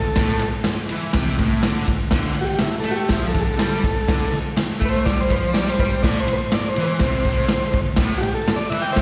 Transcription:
Already playing: A4
0.16 A2, kick, snare, ride
0.39 ride
0.43 muted distorted electric guitar stroke
0.64 muted distorted electric guitar stroke, snare, ride
0.89 E3, ride
1.13 C3, kick, snare, ride
1.38 A2, kick, ride
1.63 D3, snare, ride
1.88 muted distorted electric guitar stroke, kick, ride
2.11 D3, kick, snare, crash
2.35 muted distorted electric guitar stroke, ride
2.41 F#4 G4
2.59 E4, muted distorted electric guitar stroke, snare, ride
2.80 A4, ride
2.85 A3
2.91 F#4
2.96 G4
3.09 F3 E4, kick, snare, ride
3.28 A4
3.34 D3, kick, ride
3.40 G#4
3.45 A4
3.59 G3, snare, ride
3.84 muted distorted electric guitar stroke, kick, ride
4.08 D3, kick, snare, ride
4.32 muted distorted electric guitar stroke, ride
4.57 muted distorted electric guitar stroke, snare, ride
4.80 A3, kick, ride
4.85 B4
4.90 C5
5.05 G3 D5, kick, snare, ride
5.20 C5
5.30 F3 B4, kick, ride
5.36 C5
5.53 G3 D5, snare, ride
5.69 C5
5.79 B4, kick, ride
5.85 C5
6.02 A2 D5, kick, snare, crash
6.20 C5
6.28 muted distorted electric guitar stroke, ride
6.33 B4
6.37 C5
6.52 D5, muted distorted electric guitar stroke, snare, ride
6.69 C5
6.76 E3, ride
6.83 B4 C5
6.99 C3, kick, snare, ride
7.25 A2, kick, ride
7.48 D3, snare, ride
7.73 muted distorted electric guitar stroke, kick, ride
7.96 A2, kick, snare, ride
8.18 F#4 G4
8.23 muted distorted electric guitar stroke, ride
8.35 A4
8.48 muted distorted electric guitar stroke, snare, ride
8.56 D5
8.70 E3 E5, ride
8.82 G5
8.92 C5 E5
8.96 C3, kick, snare, ride

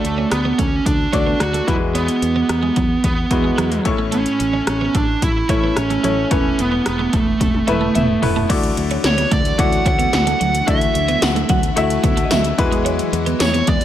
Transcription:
Already playing: D3 A3 D4 F#4 D5
0.04 D2, muted clean electric guitar stroke, closed hi-hat
0.18 C#4
0.31 D2 B3, muted clean electric guitar stroke, cross-stick, closed hi-hat
0.45 B3
0.58 D2 A3 C#4, kick, closed hi-hat
0.86 D2 D4, muted clean electric guitar stroke, kick, closed hi-hat
1.13 D2 A3 C#4 D4 F#4 D5, kick, closed hi-hat
1.27 B3
1.40 D2 F#4, muted clean electric guitar stroke, cross-stick, closed hi-hat
1.53 A3, closed hi-hat
1.67 E2 E3 F#3 G3 E4 F#4 B4, kick, closed hi-hat
1.74 G#3
1.95 B3 C#4, closed hi-hat
2.08 closed hi-hat
2.22 E2, muted clean electric guitar stroke, closed hi-hat
2.36 B3
2.49 E2, muted clean electric guitar stroke, cross-stick, closed hi-hat
2.62 G#3
2.76 E2 F#3, kick, closed hi-hat
3.04 E2 B3, muted clean electric guitar stroke, kick, closed hi-hat
3.31 E2 G#3 B3 E4 F#4 B4, kick, closed hi-hat
3.44 G#3
3.58 E2 F#3, cross-stick, closed hi-hat
3.72 closed hi-hat
3.85 A1 A2 A3 C#4 E4 C#5, muted clean electric guitar stroke, kick, closed hi-hat
3.98 A3
4.12 A3 C#4, closed hi-hat
4.26 closed hi-hat
4.39 A1, muted clean electric guitar stroke, closed hi-hat
4.53 C#4
4.67 A1 C#4, muted clean electric guitar stroke, cross-stick, closed hi-hat
4.81 B3
4.95 A1 A3 D4, kick, closed hi-hat
5.22 A1 E4, muted clean electric guitar stroke, kick, closed hi-hat
5.49 A1 A3 C#4 E4 C#5, kick, closed hi-hat
5.64 B3
5.76 A1 C#4, muted clean electric guitar stroke, cross-stick, closed hi-hat
5.90 A3, closed hi-hat
6.03 A1 F#3 A3 C#4 E4 C#5, closed hi-hat
6.31 E1 E3 A3 B3 C#4 E4 B4, kick, closed hi-hat
6.58 E1 B3, muted clean electric guitar stroke, closed hi-hat
6.72 B3
6.85 E1 B3, muted clean electric guitar stroke, cross-stick, closed hi-hat
6.99 A3
7.13 E1 A3, kick, closed hi-hat
7.40 E1, muted clean electric guitar stroke, kick, closed hi-hat, high tom
7.54 high tom
7.67 E1 A3 B3 E4 B4 E5, closed hi-hat, mid tom
7.81 A3
7.95 E1 B3 E5, closed hi-hat, mid tom
8.22 E1 A3 B3 E4 B4, muted clean electric guitar stroke, floor tom, open hi-hat
8.36 A3, floor tom
8.49 D2 D3 E3 F#3 A3 D4 E4 F#4 D5, kick, closed hi-hat, crash
8.63 closed hi-hat
8.77 D2, muted clean electric guitar stroke, closed hi-hat
8.91 C#4, closed hi-hat
9.04 D2 C#5, muted clean electric guitar stroke, snare, closed hi-hat
9.18 B3, closed hi-hat
9.31 D2 A3 D5, kick, closed hi-hat
9.45 closed hi-hat
9.58 D2 A3 E4 F#4 D5 F#5, muted clean electric guitar stroke, kick, closed hi-hat
9.72 closed hi-hat
9.85 D2 C#4 F#5, kick, closed hi-hat
9.99 B3, closed hi-hat
10.13 D2 F#5, muted clean electric guitar stroke, snare, closed hi-hat
10.27 A3, closed hi-hat
10.40 D2 F#3, closed hi-hat
10.55 closed hi-hat
10.67 D2 D3 A3 D4 E4 F#4 E5, kick, closed hi-hat
10.81 closed hi-hat
10.95 D2, muted clean electric guitar stroke, closed hi-hat
11.08 B3, closed hi-hat
11.22 D2 F#5, muted clean electric guitar stroke, snare, closed hi-hat, tambourine
11.36 A3, closed hi-hat
11.49 D2 F#3 F#5, kick, closed hi-hat
11.63 closed hi-hat
11.76 D2 A3 E4 F#4 E5 F#5, muted clean electric guitar stroke, closed hi-hat
11.90 closed hi-hat
12.04 D2 B3, kick, closed hi-hat
12.17 A3, closed hi-hat
12.25 D#5
12.31 D2 F#3 E5, snare, closed hi-hat, tambourine
12.44 closed hi-hat
12.58 E2 E3 G#3 B3 E4 F#4 B4, muted clean electric guitar stroke, kick, closed hi-hat
12.72 G#3, closed hi-hat
12.85 C#4, closed hi-hat
12.99 closed hi-hat
13.13 E2, muted clean electric guitar stroke, closed hi-hat
13.26 B3, closed hi-hat
13.40 E2 C#5, muted clean electric guitar stroke, snare, closed hi-hat, tambourine
13.54 B3, closed hi-hat
13.67 E2 G#3 D5, kick, closed hi-hat
13.81 closed hi-hat

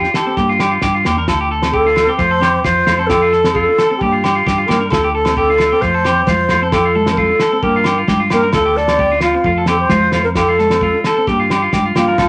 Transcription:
Already playing: F4 G4
0.04 D4, snare
0.14 G4 A4, snare, low agogo
0.27 C4 A4
0.37 G2 A#3 G4, kick, snare
0.49 F4
0.59 D4 G4, snare, low agogo
0.71 F4
0.82 G2 G4, kick, snare
0.94 F4
1.05 E2 A#3 G4, snare, low agogo
1.17 D4 A#4
1.28 D2 F4 A4, kick, snare, low agogo
1.41 G4
1.51 A4
1.62 C4, snare, low agogo
1.72 G4 A4, kick
1.85 D4 F4
1.96 snare, low agogo
2.07 C4 G4
2.17 F2 A3 F4 C5, kick, snare
2.31 A4
2.40 C4 G4, snare, low agogo
2.64 F2 F4 C5, kick, snare
2.86 F2 A3 F4, snare, low agogo
2.98 C4 A4
3.07 F4 G4 A4, kick, snare, low agogo
3.22 F4
3.33 A4, snare
3.44 C4, snare, low agogo
3.52 F4 A4, kick
3.69 D4
3.78 A4, snare, low agogo
3.91 C4 A4
3.97 G4, kick
4.01 G2 A#3 G4
4.13 F4
4.24 D4 G4, snare, low agogo
4.35 F4
4.46 G2 G4, kick, snare
4.58 F4
4.66 G2 A#3 G4 A#4, snare, low agogo
4.81 D4 A#4
4.90 D2 F4 A4, kick, snare, low agogo
5.04 G4
5.13 A4
5.25 C4, snare, low agogo
5.37 G4 A4, kick
5.49 D4 F4
5.58 snare, low agogo
5.72 C4 G4
5.81 F2 A3 F4 C5, kick, snare, muted conga
5.94 A4
6.05 C4 G4, snare, low agogo
6.25 F2 F4 C5, kick, snare, muted conga, high conga
6.49 F2 A3 F4, snare, low agogo
6.62 C4 A4
6.72 F4 G4 A4, kick, snare, muted conga, low agogo
6.85 F4
6.95 A4, muted conga, high conga
7.06 C4, snare, low agogo
7.12 A#4
7.17 F4 A4, kick, high conga
7.30 D4
7.39 A4, snare, low agogo
7.53 C4 A4
7.61 G2 A#3 G4 A#4, kick
7.76 F4
7.84 D4 G4, snare, low agogo
7.98 F4
8.08 G2 G4, kick, snare, muted conga, high conga
8.20 F4
8.30 G2 A#3 G4 A#4, snare, low agogo
8.43 D4 A#4
8.53 D2 F4 A4, kick, snare, muted conga, high conga, low agogo
8.65 G4
8.76 A4 D5, snare, muted conga
8.88 C4, snare, low agogo
8.99 G4, kick, high conga
9.12 D4 F4
9.21 F4, snare, low agogo
9.34 C4, muted clean electric guitar stroke
9.44 F2 A3 F4, kick
9.58 A4
9.66 C4 G4 A4, snare, low agogo
9.80 C5
9.89 F2 F4, kick, snare, muted conga, high conga
10.12 F2 A3 F4, snare, low agogo
10.24 C4 A#4, muted clean electric guitar stroke
10.35 F4 G4 A4, kick, snare, low agogo
10.49 F4
10.59 A4, snare, muted conga, high conga
10.70 C4, snare, low agogo
10.81 F4, kick, high conga
10.94 D4
11.04 A4, snare, low agogo
11.17 C4 A4
11.26 G2 A#3 G4, kick, snare, muted conga
11.40 F4
11.50 D4 G4, snare, low agogo
11.62 F4
11.73 G2 G4, kick, snare, muted conga, high conga
11.85 F4
11.95 G2 A#3 F4 G4, snare, low conga, low agogo
12.08 D4 A#4
12.18 D2 F4 A4, kick, snare, muted conga, high conga, low agogo

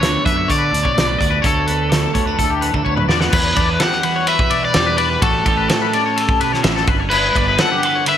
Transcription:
Already playing: D2 B3 C#5
0.01 D3 A4, snare, closed hi-hat
0.25 F#2 D4 B4 E5, kick, closed hi-hat
0.36 C#5
0.48 A2 D3 C#5 D5, kick, closed hi-hat
0.58 B4
0.71 D2 D4 A4, closed hi-hat
0.83 B1 C#5, kick
0.94 B3 D5, snare, closed hi-hat
1.07 B4
1.18 D2 F#4 D5, kick, closed hi-hat
1.30 B4
1.42 D2 C#5, kick, closed hi-hat
1.46 A4
1.67 B3 B4, closed hi-hat
1.89 D3 C#5, snare, closed hi-hat
2.02 A4
2.14 D2 B3 C#5, kick, closed hi-hat
2.26 D4 B4
2.38 D2 A2 A4, kick, closed hi-hat
2.50 G4
2.61 B3 B4, closed hi-hat
2.74 D2 D4 A4, kick
2.85 D2 B3 C#5, kick
2.96 B4, mid tom
3.08 E2 F#4 D5, snare
3.20 F#5, snare
3.30 E2 B4, kick, crash
3.56 E2 D4 D5, kick, ride
3.69 B4
3.79 G3 A4 F#5, snare, ride
3.91 G4, snare
4.03 E3 B4, ride
4.16 C#5
4.27 F#4 B4 E5, ride
4.39 kick
4.50 B2 D5, ride
4.63 B4 D5
4.74 E2 G3 G4, snare, ride
4.86 B4
4.97 D4 B4 D5, ride
5.10 B4
5.22 A1 A2 F#4 A4, kick, ride
5.45 A1 G4 A4, kick, ride
5.57 B4
5.68 E4 C#5, snare, ride
5.82 B4
5.93 C#4 D5, ride
6.06 C#5
6.16 G4 A4, ride
6.29 kick
6.40 B2 B4, ride
6.52 C#5, snare
6.63 A1 A2 E5, snare, ride
6.76 A4, snare
6.87 G1 G2 B4, kick, ride
7.00 C#5
7.10 E4 B4, crash
7.35 G1 B3 D5, kick, ride
7.48 B4
7.58 D3 A4 F#5, snare, ride
7.72 G4
7.83 A4 B4, ride
7.95 C#5
8.06 D3 B4 E5, ride

